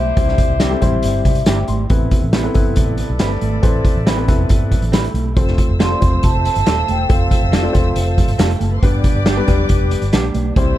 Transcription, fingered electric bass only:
Already playing: B1
0.17 C2
0.50 C2
0.82 A1
1.04 G1
1.25 C3
1.47 G1
1.68 G#1
1.90 A1
2.23 A1
2.55 G1
2.77 A1
3.10 B1
3.20 G1
3.42 G#1
3.63 A1
3.96 A1
4.29 F1
4.50 G1
4.82 A1
5.14 B1
5.37 F1
5.69 F1
6.02 E1
6.24 F1
6.56 G1
6.67 D#1
6.89 E1
7.10 F1
7.43 F1
7.75 E1
7.96 F1
8.28 G1
8.39 F1
8.61 F#1
8.83 G1
9.15 G1
9.48 E1
9.70 F1
10.02 G1
10.13 A#1
10.35 B1
10.56 C2

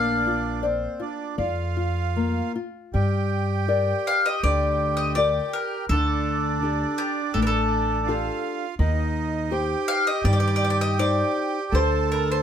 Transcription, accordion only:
Already playing: D4
0.62 C4
1.01 D4
1.38 F4
2.94 G4
5.90 D4
8.06 F4
8.79 D#4
9.51 G4
11.71 A4

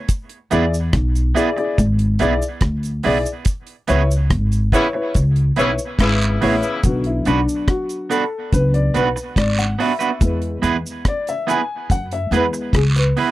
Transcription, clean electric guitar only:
0.51 B3 E4 G#4 D5
1.35 B3 E4 G#4 D5
1.57 muted clean electric guitar stroke
2.20 B3 E4 G#4 D5
3.04 B3 E4 G#4 D5
3.88 B3 E4 G#4 C#5
4.73 B3 E4 G#4 C#5
4.93 muted clean electric guitar stroke
5.56 B3 E4 G#4 C#5
6.41 B3 E4 G#4 C#5
7.26 B3 D4 F#4 B4
8.10 B3 D4 F#4 B4
8.94 B3 D4 F#4 B4
9.16 muted clean electric guitar stroke
9.79 B3 D4 F#4 B4
9.99 B3 D4 F#4 B4
10.62 B3 E4 G#4 B4
11.47 B3 E4 G#4 B4
12.32 B3 E4 G#4 B4
12.53 muted clean electric guitar stroke
13.17 B3 E4 G#4 B4

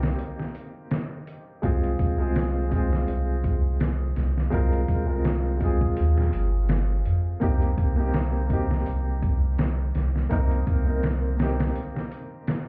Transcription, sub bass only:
Already playing: C2
1.64 C2
2.00 C2
3.09 C2
4.18 C2
4.53 C2
4.89 C2
5.98 D#2
6.34 G1
7.06 F2
7.42 C2
7.78 C2
8.87 C2
9.96 C2
10.31 C2
10.67 C2

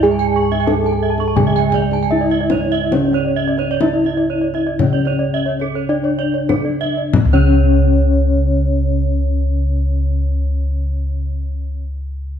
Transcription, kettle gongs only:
Already playing: G#2
0.03 G#4
0.68 D4
1.37 C#3
2.12 D4
2.93 C#4
3.82 D4
4.80 C#3
5.89 D4
7.25 C#2

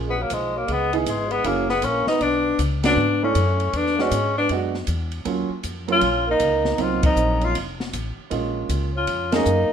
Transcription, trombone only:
0.06 G#3
0.19 F#3
0.31 F3
0.56 F#3
0.68 G#3
0.93 B2
1.07 E3
1.31 G#3
1.46 F#3
1.70 G#3
1.85 A#3
2.09 B3
2.22 B3
2.85 B3
3.24 A3
3.75 B3
4.00 G#3
4.37 B3
5.89 C#4
6.27 A#3
6.79 C4
7.04 C4
7.43 C#4
8.94 C#4
9.33 A#3

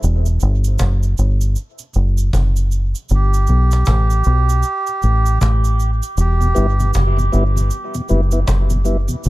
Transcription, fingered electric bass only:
0.04 E1
0.43 G1
0.81 F#1
1.19 G1
1.96 F#1
2.34 F#1
3.11 G1
3.49 B1
3.88 A1
4.27 B1
5.04 A1
5.42 A1
6.17 E1
6.57 G1
6.96 F#1
7.34 G1
8.11 F#1
8.48 F#1
9.26 G1

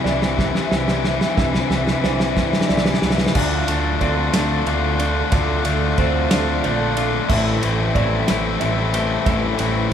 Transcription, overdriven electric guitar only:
0.00 E3
0.08 C3 E3
0.15 C3 E3
0.23 C3 E3
0.30 C3 E3
0.37 C3 E3
0.45 C3 E3
0.52 C3 E3
0.61 C3 E3
0.68 C3 E3
0.76 C3 E3
0.84 C3 E3
0.91 C3 E3
0.98 C3 E3
1.06 C3 E3
1.13 C3 E3
1.21 C3 E3
1.29 C3 E3
1.37 C3 E3
1.45 C3 E3
1.51 C3 E3
1.60 C3 E3
1.68 C3 E3
1.75 C3 E3
1.83 C3 E3
1.89 C3 E3
1.99 C3 E3
2.06 C3 E3
2.14 C3 E3
2.21 C3 E3
2.29 C3 E3
2.35 C3 E3
2.44 C3 E3
2.51 C3 E3
2.59 C3 E3
2.67 C3 E3
2.74 C3 E3
2.82 C3 E3
2.89 C3 E3
2.97 C3 E3
3.05 C3 E3
3.12 C3 E3
3.20 C3 E3
3.27 C3 E3
3.35 D3 A3 D4 F4
3.68 D3 A3 D4 F4
4.01 D3 A3 D4 F4
4.34 D3 A3 D4 F4
4.67 D3 A3 D4 F4
4.99 D3 A3 D4 F4
5.32 D3 A3 D4 F4
5.65 D3 A3 D4 F4
5.98 D3 A3 D4 F4
6.31 D3 A3 D4 F4
6.64 D3 A3 D4 F4
6.97 D3 A3 D4 F4
7.31 A2 E3 A3 C4 E4
7.63 A2 E3 A3 C4 E4
7.96 A2 E3 A3 C4 E4
8.29 A2 E3 A3 C4 E4
8.62 A2 E3 A3 C4 E4
8.94 A2 E3 A3 C4 E4
9.27 A2 E3 A3 C4 E4
9.60 A2 E3 A3 C4 E4

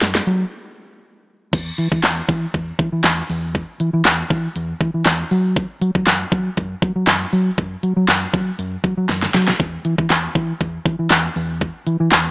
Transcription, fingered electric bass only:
0.02 F#2
0.27 F#3
1.53 E2
1.78 E3
1.92 E3
2.04 E2
2.29 E3
2.54 E2
2.79 E3
2.92 E3
3.04 E2
3.30 E2
3.80 E3
3.93 E3
4.05 E2
4.30 E3
4.56 E2
4.81 E3
4.94 E3
5.06 E2
5.31 F#3
5.81 F#3
5.95 F#3
6.07 F#2
6.32 F#3
6.57 F#2
6.82 F#3
6.96 F#3
7.08 F#2
7.33 F#3
7.58 F#2
7.83 F#3
7.96 F#3
8.08 F#2
8.34 F#3
8.59 F#2
8.84 F#3
8.97 F#3
9.09 F#2
9.34 F#3
9.60 E2
9.85 E3
9.98 E3
10.10 E2
10.35 E3
10.61 E2
10.85 E3
10.99 E3
11.11 E2
11.36 E2
11.87 E3
12.00 E3
12.12 E2

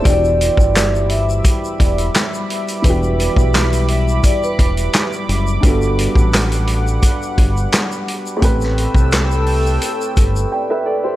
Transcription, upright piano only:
Already playing: C5
0.02 E3 B3 D4
0.08 F#4 G4
2.82 E3 B3 D4
2.88 F#4 G4
5.61 G2 G3 B3
5.66 F#4 A4
8.37 A2 A3 C4
8.43 G4 B4
10.52 D5 G5
10.70 B4 E5
10.86 A4 D5
11.04 G4 C5

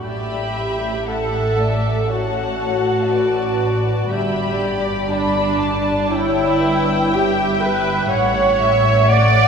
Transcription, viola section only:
0.04 G4
1.06 A4
2.09 F#4
4.11 G4
5.12 D4
6.11 E4
7.13 G4
7.61 B4
8.11 C#5
9.10 D5

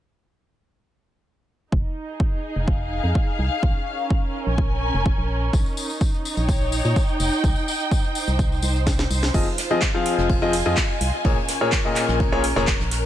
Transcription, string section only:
1.72 D#4
2.10 G#4
2.59 F5
3.63 C#4
3.96 A#4
4.49 G#5
5.54 D#4
6.36 C#5 G5
7.94 C5
9.34 F4
9.74 G#5
10.11 D#5
11.25 C#4
11.40 A#4

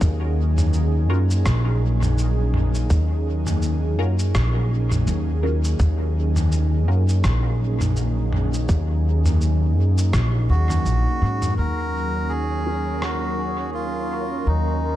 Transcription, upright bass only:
0.01 D#2
1.10 F#2
1.46 A#1
2.90 D#2
3.99 F#2
4.35 A#1
5.07 D#2
5.80 D#2
6.88 F#2
7.24 A#1
8.69 D#2
9.77 F#2
10.13 A#1
10.49 D#2
10.86 A#1
11.22 G#2
11.58 D#2
14.47 D#2

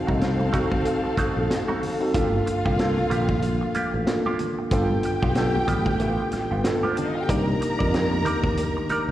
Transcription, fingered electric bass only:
0.09 C2
1.18 muted fingered electric bass stroke
1.37 A#1
2.14 G1
2.66 C2
3.10 A#1
3.76 muted fingered electric bass stroke
3.94 A1
4.72 G1
5.22 B1
5.68 A1
6.33 muted fingered electric bass stroke
6.51 G1
7.29 C2
7.81 F2
8.26 D#2
8.90 muted fingered electric bass stroke

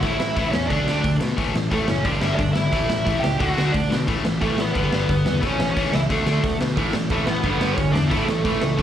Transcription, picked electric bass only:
0.03 A1
0.20 A1
0.37 A1
0.54 E2
0.71 D2
0.87 D2
1.05 D2
1.21 B2
1.38 A1
1.55 A1
1.72 A1
1.88 F#1
2.05 G1
2.22 G1
2.39 G1
2.57 G#1
2.73 A1
2.90 A1
3.07 A1
3.24 C#2
3.41 D2
3.58 D2
3.75 D2
3.92 B2
4.08 A1
4.26 A1
4.42 A1
4.59 A1
4.76 G1
4.92 G1
5.09 G1
5.26 E2
5.43 A1
5.59 A1
5.77 A1
5.92 C#2
6.11 D2
6.26 D2
6.44 D2
6.61 B2
6.77 A1
6.94 A1
7.10 A1
7.28 A1
7.44 G1
7.61 G1
7.78 G1
7.94 E2
8.12 A1
8.28 A1
8.45 A1
8.62 C#2
8.79 D2

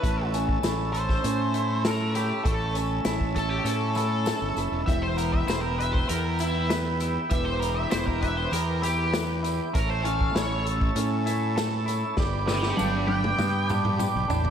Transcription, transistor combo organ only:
0.00 C#4 A5 E6
4.86 B3 G5
7.33 D6
9.75 C#5 A5 E6
12.19 B4 D5 G5 D6

